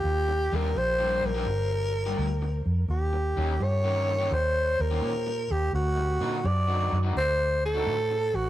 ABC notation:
X:1
M:4/4
L:1/16
Q:"Swing" 1/4=84
K:Gm
V:1 name="Tenor saxophone"
G2 B2 c2 B8 z2 | G4 _d4 c2 B4 G2 | ^F4 d2 z2 c2 A4 F2 |]
V:2 name="Overdriven electric guitar"
z2 [G,B,DG] z2 [G,B,DG] z [G,B,DG] z3 [G,B,DG] z4 | z2 [E,B,_DG] z2 [E,B,DG] z [E,B,DG] z3 [E,B,DG] z4 | z2 [D,CE^F] z2 [D,CEF] z [D,CEF] z3 [D,CEF] z4 |]
V:3 name="Fingered electric bass" clef=bass
E,,2 E,,2 B,,,2 B,,,2 G,,,4 D,,2 F,,2 | E,,2 E,,2 G,,4 E,,2 E,,2 B,,2 E,,2 | D,,2 B,,2 ^F,,2 F,,2 D,,4 A,,2 A,,,2 |]